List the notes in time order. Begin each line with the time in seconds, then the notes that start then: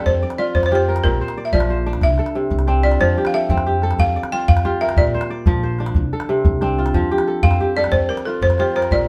Already playing: F3 C4 D4 F4 G4 A4
0.06 F2 C5, calabash thump
0.23 D5
0.30 calabash click
0.38 F4 D5
0.55 F2 C5, calabash thump
0.63 C5, calabash click
0.72 F4 G4 C5, calabash click
0.88 A#4
0.96 calabash click
1.04 A#1 A#2 A#4, calabash thump
1.21 C5
1.28 calabash click
1.37 D5
1.45 E5
1.52 A#1 F3 D5, calabash thump
1.60 calabash click
1.70 C5
1.77 calabash click
1.86 D4
1.93 calabash click
2.01 C2 E5, calabash thump, calabash click
2.10 calabash click
2.18 A4, calabash click
2.26 calabash click
2.35 C3
2.51 C2, calabash thump, calabash click
2.59 calabash click
2.67 C4 D4, calabash click
2.83 F4 D5
2.92 calabash click
3.00 F2 F3 C5, calabash thump
3.17 G4
3.25 F5, calabash click
3.34 A4 E5
3.49 F2 C4, calabash thump
3.58 calabash click
3.66 G4
3.82 A4, calabash click
3.91 calabash click
3.99 F2 F5, calabash thump
4.16 D5
4.23 calabash click
4.32 F4 G5
4.48 F2 F5, calabash thump
4.57 calabash click
4.65 F4 G4, calabash click
4.81 A#4 E5
4.89 calabash click
4.97 A#1 A#2 D5, calabash thump
5.14 C5
5.21 calabash click
5.30 D5
5.46 A#1 F3, calabash thump
5.63 C5
5.79 D4, calabash click
5.86 calabash click
5.95 C2, calabash thump
6.13 A4
6.20 calabash click
6.29 C3
6.45 C2, calabash thump
6.61 C4 D4, calabash click
6.78 F4
6.86 calabash click
6.94 F2 F3, calabash thump
7.11 G4
7.18 calabash click
7.27 A4
7.43 F2 C4 F5, calabash thump
7.51 calabash click
7.60 G4
7.76 A4 D5, calabash click
7.84 calabash click
7.92 F2 C5, calabash thump
8.09 A#4 D5
8.17 calabash click
8.25 F4 A4
8.41 F2 C5, calabash thump
8.50 calabash click
8.58 F4 G4 C5, calabash click
8.75 A#4 C5
8.82 calabash click
8.91 A#1 A#2 D5, calabash thump